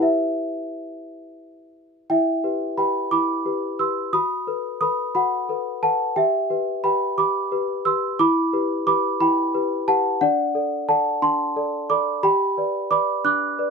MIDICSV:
0, 0, Header, 1, 2, 480
1, 0, Start_track
1, 0, Key_signature, 1, "minor"
1, 0, Tempo, 683371
1, 26, Time_signature, 6, 3, 24, 8
1, 2906, Tempo, 675676
1, 9701, End_track
2, 0, Start_track
2, 0, Title_t, "Celesta"
2, 0, Program_c, 0, 8
2, 0, Control_c, 0, 64, 127
2, 0, Note_on_c, 0, 64, 67
2, 0, Note_on_c, 0, 67, 51
2, 7, Note_on_c, 0, 71, 55
2, 18, Note_on_c, 0, 76, 92
2, 41, Control_c, 0, 64, 0
2, 142, Control_c, 0, 64, 127
2, 746, Note_off_c, 0, 76, 0
2, 1424, Note_off_c, 0, 64, 0
2, 1430, Note_off_c, 0, 67, 0
2, 1435, Note_off_c, 0, 71, 0
2, 1473, Note_on_c, 0, 79, 108
2, 1475, Note_on_c, 0, 64, 71
2, 1482, Note_on_c, 0, 76, 76
2, 1486, Control_c, 0, 64, 0
2, 1605, Control_c, 0, 64, 127
2, 1706, Note_off_c, 0, 64, 0
2, 1712, Note_on_c, 0, 67, 54
2, 1715, Note_on_c, 0, 71, 57
2, 1928, Note_off_c, 0, 67, 0
2, 1928, Note_off_c, 0, 76, 0
2, 1929, Note_off_c, 0, 71, 0
2, 1949, Note_off_c, 0, 79, 0
2, 1949, Note_on_c, 0, 67, 56
2, 1950, Note_on_c, 0, 83, 98
2, 1951, Note_on_c, 0, 71, 58
2, 1957, Note_on_c, 0, 79, 79
2, 2165, Note_off_c, 0, 67, 0
2, 2166, Note_off_c, 0, 71, 0
2, 2177, Note_off_c, 0, 79, 0
2, 2187, Note_on_c, 0, 86, 107
2, 2188, Note_on_c, 0, 64, 56
2, 2189, Note_off_c, 0, 83, 0
2, 2196, Note_on_c, 0, 83, 87
2, 2420, Note_off_c, 0, 64, 0
2, 2426, Note_on_c, 0, 67, 56
2, 2430, Note_on_c, 0, 71, 57
2, 2641, Note_off_c, 0, 67, 0
2, 2642, Note_off_c, 0, 83, 0
2, 2643, Note_off_c, 0, 71, 0
2, 2664, Note_on_c, 0, 67, 49
2, 2665, Note_off_c, 0, 86, 0
2, 2665, Note_on_c, 0, 88, 92
2, 2667, Note_on_c, 0, 71, 62
2, 2673, Note_on_c, 0, 84, 68
2, 2879, Note_off_c, 0, 67, 0
2, 2881, Note_off_c, 0, 71, 0
2, 2891, Note_off_c, 0, 84, 0
2, 2901, Note_on_c, 0, 66, 71
2, 2901, Note_on_c, 0, 87, 120
2, 2904, Note_off_c, 0, 88, 0
2, 2909, Note_on_c, 0, 83, 90
2, 2918, Control_c, 0, 64, 0
2, 3053, Control_c, 0, 64, 127
2, 3135, Note_off_c, 0, 66, 0
2, 3143, Note_on_c, 0, 69, 54
2, 3147, Note_on_c, 0, 71, 59
2, 3359, Note_off_c, 0, 83, 0
2, 3360, Note_off_c, 0, 69, 0
2, 3362, Note_off_c, 0, 71, 0
2, 3373, Note_off_c, 0, 87, 0
2, 3382, Note_on_c, 0, 69, 53
2, 3382, Note_on_c, 0, 87, 118
2, 3386, Note_on_c, 0, 71, 60
2, 3392, Note_on_c, 0, 83, 86
2, 3600, Note_off_c, 0, 69, 0
2, 3602, Note_off_c, 0, 71, 0
2, 3612, Note_off_c, 0, 83, 0
2, 3624, Note_off_c, 0, 87, 0
2, 3624, Note_on_c, 0, 66, 66
2, 3624, Note_on_c, 0, 83, 96
2, 3632, Note_on_c, 0, 78, 84
2, 3858, Note_off_c, 0, 66, 0
2, 3867, Note_on_c, 0, 69, 56
2, 3870, Note_on_c, 0, 71, 55
2, 4080, Note_off_c, 0, 78, 0
2, 4082, Note_off_c, 0, 69, 0
2, 4084, Note_off_c, 0, 71, 0
2, 4105, Note_off_c, 0, 83, 0
2, 4106, Note_on_c, 0, 69, 54
2, 4107, Note_on_c, 0, 81, 112
2, 4110, Note_on_c, 0, 71, 58
2, 4115, Note_on_c, 0, 78, 78
2, 4322, Note_off_c, 0, 69, 0
2, 4324, Note_off_c, 0, 71, 0
2, 4334, Note_off_c, 0, 78, 0
2, 4344, Note_on_c, 0, 79, 109
2, 4345, Note_on_c, 0, 67, 72
2, 4346, Note_off_c, 0, 81, 0
2, 4353, Note_on_c, 0, 76, 91
2, 4360, Control_c, 0, 64, 0
2, 4473, Control_c, 0, 64, 127
2, 4575, Note_off_c, 0, 67, 0
2, 4584, Note_on_c, 0, 67, 58
2, 4588, Note_on_c, 0, 71, 66
2, 4801, Note_off_c, 0, 67, 0
2, 4801, Note_off_c, 0, 76, 0
2, 4803, Note_off_c, 0, 71, 0
2, 4824, Note_on_c, 0, 83, 103
2, 4825, Note_off_c, 0, 79, 0
2, 4826, Note_on_c, 0, 67, 59
2, 4828, Note_on_c, 0, 71, 62
2, 4833, Note_on_c, 0, 79, 84
2, 5042, Note_off_c, 0, 67, 0
2, 5043, Note_off_c, 0, 71, 0
2, 5053, Note_off_c, 0, 79, 0
2, 5065, Note_off_c, 0, 83, 0
2, 5065, Note_on_c, 0, 67, 62
2, 5066, Note_on_c, 0, 86, 112
2, 5075, Note_on_c, 0, 83, 89
2, 5298, Note_off_c, 0, 67, 0
2, 5307, Note_on_c, 0, 67, 59
2, 5309, Note_on_c, 0, 71, 66
2, 5522, Note_off_c, 0, 67, 0
2, 5522, Note_off_c, 0, 83, 0
2, 5523, Note_off_c, 0, 71, 0
2, 5546, Note_off_c, 0, 86, 0
2, 5546, Note_on_c, 0, 88, 108
2, 5547, Note_on_c, 0, 67, 60
2, 5549, Note_on_c, 0, 71, 65
2, 5554, Note_on_c, 0, 84, 85
2, 5762, Note_off_c, 0, 67, 0
2, 5763, Note_off_c, 0, 71, 0
2, 5773, Note_off_c, 0, 84, 0
2, 5785, Note_off_c, 0, 88, 0
2, 5788, Note_on_c, 0, 64, 89
2, 5788, Note_on_c, 0, 86, 127
2, 5796, Control_c, 0, 64, 0
2, 5796, Note_on_c, 0, 83, 111
2, 5932, Control_c, 0, 64, 127
2, 6019, Note_off_c, 0, 64, 0
2, 6027, Note_on_c, 0, 67, 62
2, 6029, Note_on_c, 0, 71, 72
2, 6241, Note_off_c, 0, 83, 0
2, 6242, Note_off_c, 0, 67, 0
2, 6243, Note_off_c, 0, 71, 0
2, 6259, Note_off_c, 0, 86, 0
2, 6267, Note_on_c, 0, 67, 62
2, 6267, Note_on_c, 0, 86, 127
2, 6271, Note_on_c, 0, 71, 73
2, 6275, Note_on_c, 0, 83, 101
2, 6481, Note_off_c, 0, 67, 0
2, 6484, Note_off_c, 0, 71, 0
2, 6492, Note_off_c, 0, 83, 0
2, 6505, Note_off_c, 0, 86, 0
2, 6506, Note_on_c, 0, 64, 68
2, 6506, Note_on_c, 0, 83, 119
2, 6515, Note_on_c, 0, 79, 88
2, 6737, Note_off_c, 0, 64, 0
2, 6746, Note_on_c, 0, 67, 60
2, 6748, Note_on_c, 0, 71, 74
2, 6959, Note_off_c, 0, 79, 0
2, 6960, Note_off_c, 0, 67, 0
2, 6961, Note_off_c, 0, 71, 0
2, 6983, Note_off_c, 0, 83, 0
2, 6983, Note_on_c, 0, 67, 71
2, 6985, Note_on_c, 0, 81, 127
2, 6988, Note_on_c, 0, 71, 74
2, 6992, Note_on_c, 0, 78, 91
2, 7198, Note_off_c, 0, 67, 0
2, 7200, Note_off_c, 0, 71, 0
2, 7210, Note_off_c, 0, 78, 0
2, 7220, Note_on_c, 0, 78, 127
2, 7221, Note_on_c, 0, 62, 100
2, 7223, Note_off_c, 0, 81, 0
2, 7230, Note_on_c, 0, 74, 96
2, 7232, Control_c, 0, 64, 0
2, 7351, Control_c, 0, 64, 127
2, 7454, Note_off_c, 0, 62, 0
2, 7455, Note_off_c, 0, 74, 0
2, 7460, Note_on_c, 0, 69, 65
2, 7463, Note_on_c, 0, 74, 68
2, 7676, Note_off_c, 0, 69, 0
2, 7678, Note_off_c, 0, 74, 0
2, 7699, Note_on_c, 0, 69, 65
2, 7700, Note_off_c, 0, 78, 0
2, 7700, Note_on_c, 0, 81, 126
2, 7704, Note_on_c, 0, 74, 71
2, 7709, Note_on_c, 0, 78, 88
2, 7916, Note_off_c, 0, 69, 0
2, 7918, Note_off_c, 0, 74, 0
2, 7928, Note_off_c, 0, 78, 0
2, 7939, Note_on_c, 0, 62, 80
2, 7940, Note_off_c, 0, 81, 0
2, 7940, Note_on_c, 0, 84, 127
2, 7948, Note_on_c, 0, 81, 102
2, 8172, Note_off_c, 0, 62, 0
2, 8181, Note_on_c, 0, 69, 69
2, 8184, Note_on_c, 0, 74, 63
2, 8395, Note_off_c, 0, 81, 0
2, 8397, Note_off_c, 0, 69, 0
2, 8398, Note_off_c, 0, 74, 0
2, 8419, Note_on_c, 0, 69, 69
2, 8419, Note_on_c, 0, 86, 108
2, 8420, Note_off_c, 0, 84, 0
2, 8421, Note_on_c, 0, 74, 76
2, 8428, Note_on_c, 0, 83, 79
2, 8635, Note_off_c, 0, 69, 0
2, 8636, Note_off_c, 0, 74, 0
2, 8648, Note_off_c, 0, 83, 0
2, 8656, Note_on_c, 0, 67, 92
2, 8657, Note_on_c, 0, 83, 127
2, 8659, Note_off_c, 0, 86, 0
2, 8665, Note_on_c, 0, 79, 99
2, 8674, Control_c, 0, 64, 0
2, 8794, Control_c, 0, 64, 127
2, 8891, Note_off_c, 0, 67, 0
2, 8900, Note_on_c, 0, 71, 58
2, 8904, Note_on_c, 0, 74, 68
2, 9115, Note_off_c, 0, 79, 0
2, 9116, Note_off_c, 0, 71, 0
2, 9119, Note_off_c, 0, 74, 0
2, 9136, Note_on_c, 0, 86, 127
2, 9137, Note_off_c, 0, 83, 0
2, 9137, Note_on_c, 0, 71, 65
2, 9139, Note_on_c, 0, 74, 71
2, 9145, Note_on_c, 0, 83, 97
2, 9355, Note_off_c, 0, 71, 0
2, 9356, Note_off_c, 0, 74, 0
2, 9366, Note_off_c, 0, 83, 0
2, 9376, Note_off_c, 0, 86, 0
2, 9376, Note_on_c, 0, 62, 78
2, 9377, Note_on_c, 0, 90, 114
2, 9384, Note_on_c, 0, 86, 106
2, 9611, Note_off_c, 0, 62, 0
2, 9621, Note_on_c, 0, 71, 61
2, 9623, Note_on_c, 0, 74, 64
2, 9701, Note_off_c, 0, 71, 0
2, 9701, Note_off_c, 0, 74, 0
2, 9701, Note_off_c, 0, 86, 0
2, 9701, Note_off_c, 0, 90, 0
2, 9701, End_track
0, 0, End_of_file